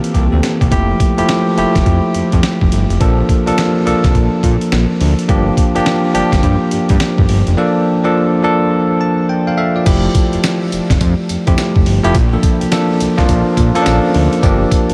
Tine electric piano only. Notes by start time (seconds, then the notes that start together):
Already playing: E3 A#3 C4 G4
0.14 A#3 G4
0.32 C4 A4
0.61 A#3 G4
0.71 F3 A3 E4 G4
1.18 F3 A3 E4 G4
1.57 F3 A3 E4 G4
3.00 F3 A#3 D4 A4
3.46 F3 A#3 D4 A4
3.85 F3 A#3 D4 A4
5.29 F3 A#3 D4 G4
5.75 F3 A#3 D4 G4
6.13 F3 A#3 D4 G4
7.57 F3 A#3 D4 A4
8.04 F3 A#3 D4 A4
8.43 F3 A#3 D4 A4
9.01 A5
9.29 G5
9.47 A#4 F5 G5
9.57 A4 E5 F5
9.76 F4 D5
9.85 F3 A3 E4 G4
11.46 F3 A3 E4 G4
12.03 F3 A3 E4 G4
12.32 F3 A#3 D4 A4
12.71 F3 A#3 D4 A4
13.17 F3 A#3 D4 F4
13.74 F3 A#3 C#4 A4
13.82 D4
14.42 F3 A#3 D4 G4